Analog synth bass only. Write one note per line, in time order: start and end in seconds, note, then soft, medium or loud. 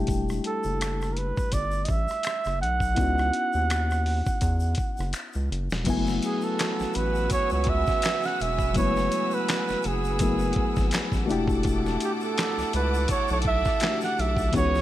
0.00 0.40 E1 medium
0.65 1.33 F#1 medium
1.54 1.86 G1 medium
1.89 2.08 A1 medium
2.46 2.63 F#1 medium
2.62 3.00 B1 medium
2.98 3.31 C#2 loud
3.55 4.22 D#2 medium
4.42 4.75 E2 loud
4.99 5.13 F#1 medium
5.36 5.50 C#2 medium
5.51 5.69 F#1 medium
5.71 5.85 E1 medium
5.87 6.20 F#1 loud
6.80 6.86 A1 soft
6.96 7.29 A1 medium
7.32 7.39 C#2 soft
7.52 7.85 C#2 medium
8.41 8.78 E1 medium
8.76 9.09 F#1 loud
9.70 9.76 F#1 soft
9.85 10.53 F#1 medium
10.57 10.65 G#1 soft
10.78 10.92 G#1 medium
10.93 11.01 A1 soft
11.12 11.31 A1 medium
11.30 11.97 E1 medium
12.58 12.64 C#2 soft
12.74 13.07 C#2 medium
13.10 13.18 B1 soft
13.31 13.63 B1 loud
14.19 14.52 B1 loud
14.55 14.82 C#2 loud